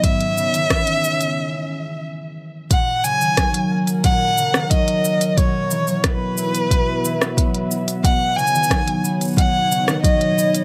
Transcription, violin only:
X:1
M:4/4
L:1/8
Q:1/4=90
K:F#mix
V:1 name="Violin"
e6 z2 | f g2 z f2 d2 | c2 B4- B z | f g2 z f2 d2 |]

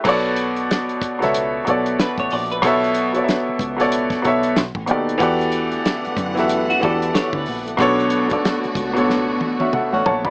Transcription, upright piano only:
X:1
M:4/4
L:1/16
Q:"Swing 16ths" 1/4=93
K:Bm
V:1 name="Upright piano"
[B,,B,Acd]6 z [B,,B,Ace]2 z [B,,B,Acd]4- [B,,B,Acd] z | [B,,B,Ace]2 z [B,,B,Acde]3 z [B,,B,Acd]2 z [B,,B,Ace]2 z2 [B,,B,^DGA=d]2 | [E,B,FGAd]6 z [E,B,FGAe]2 z [E,B,FGAd]4- [E,B,FGAd] z | [B,,B,DAc]2 z [B,,B,DAd]3 z [B,,B,DAc]2 z2 e [Af]2 [ca] [db] |]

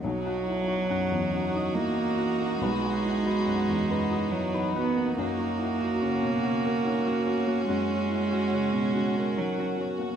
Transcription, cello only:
X:1
M:3/4
L:1/8
Q:1/4=71
K:B
V:1 name="Cello" clef=bass
F,4 A,2 | G,4 F, B, | A,6 | G,4 F, z |]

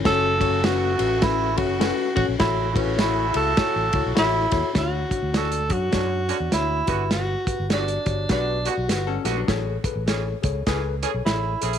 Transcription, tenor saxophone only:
X:1
M:4/4
L:1/8
Q:"Swing" 1/4=102
K:A
V:1 name="Tenor saxophone"
A2 F2 E F2 F | E C E A3 E2 | F2 A F3 E2 | F2 D2 D F2 z |
z6 E2 |]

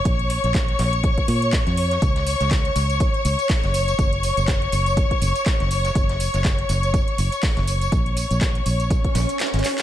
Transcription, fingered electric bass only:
X:1
M:4/4
L:1/16
Q:"Swing 16ths" 1/4=122
K:Gblyd
V:1 name="Fingered electric bass" clef=bass
B,,,3 B,,,3 B,,,3 z B,,3 F,,3 | D,,3 D,,3 D,,3 z D,, z2 G,,,3 | G,,,3 G,,,3 G,,,3 z G,,, z2 G,,,3 | G,,,3 G,,,3 G,,,3 z G,,, z2 G,,,3 |
B,,,3 B,,,3 B,,,3 z B,,, z2 A,,, z2 |]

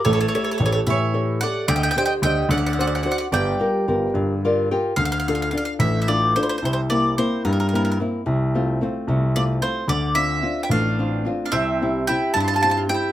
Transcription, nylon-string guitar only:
X:1
M:6/8
L:1/8
Q:3/8=73
K:Gm
V:1 name="Nylon-string guitar"
A, [GA^c] [GAc] =E, [GAc] [GAc] | D, [DGc] [DGc] D, [D^Fc] [DFc] | G, [FGB] [FGB] D, [FGBd] [FGBg] | [K:Dm] D, [DFA] [DFA] A, [DFA] [DFA] |
C, [B,CE] [B,CE] G, [B,CE] [B,CE] | C, [A,CF] [A,CF] C, [A,CF] [A,CF] | D, [CDF] [CDF] A, [CDF] [CDF] | C, [CEG] [CEG] G, [CEG] [CEG] |]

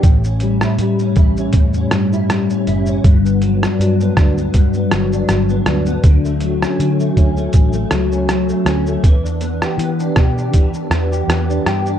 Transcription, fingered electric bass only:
X:1
M:4/4
L:1/8
Q:"Swing 16ths" 1/4=80
K:Glyd
V:1 name="Fingered electric bass" clef=bass
A,,,2 A,, A,,, E,, G,,2 F,,, | G,,,2 G,, D,, G,, G,,, G,,, D,, | D,,2 D, D,, A,,, C,,2 D,, | E,,2 E, B,, E, E,, E,, G,, |]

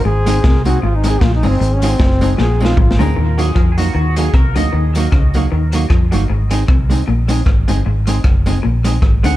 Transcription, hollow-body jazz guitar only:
X:1
M:4/4
L:1/8
Q:"Swing" 1/4=154
K:Ebdor
V:1 name="Hollow-body jazz guitar"
z [A,CEA] z [A,CEA] z [A,CEA] z [A,CEA] | z [A,CEA] z [A,CEA] z [A,CEA] z [A,CEA] | z [G,B,EG] z [G,B,EG] z [G,B,EG] z [G,B,EG] | z [G,B,EG] z [G,B,EG] z [G,B,EG] z [G,B,EG] |
z [A,CEA] z [A,CEA] z [A,CEA] z [A,CEA] | z [A,CEA] z [A,CEA] z [A,CEA] z [A,CEA] |]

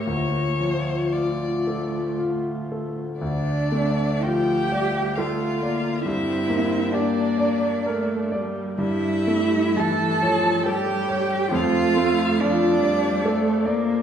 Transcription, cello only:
X:1
M:3/4
L:1/8
Q:1/4=65
K:Dm
V:1 name="Cello"
B,2 A,4 | D2 G2 F2 | E2 D3 z | E2 A2 G2 |
F2 D3 z |]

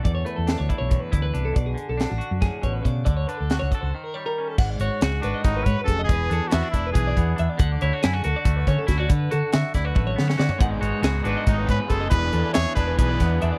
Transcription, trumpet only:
X:1
M:7/8
L:1/8
Q:1/4=139
K:Dlyd
V:1 name="Trumpet"
z6 z | z6 z | z6 z | z3 D ^D B A |
G2 F E G2 z | z6 z | z6 z | z3 D ^D B A |
B2 c B B2 z |]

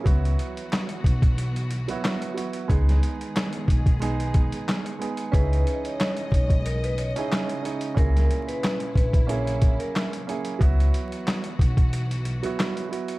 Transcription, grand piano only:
X:1
M:4/4
L:1/16
Q:"Swing 16ths" 1/4=91
K:Elyd
V:1 name="Grand piano"
[F,B,EF]8- [F,B,EF]2 z [F,B,EF]3 [F,B,EF]2 | [G,B,DG]6- [G,B,DG] z [G,B,DG]6 [G,B,DG]2 | [CDEG]8- [CDEG]2 z [CDEG]3 [CDEG]2 | [A,,CEG]6- [A,,CEG] z [A,CEG]6 [A,CEG]2 |
[F,B,EF]8- [F,B,EF]2 z [F,B,EF]3 [F,B,EF]2 |]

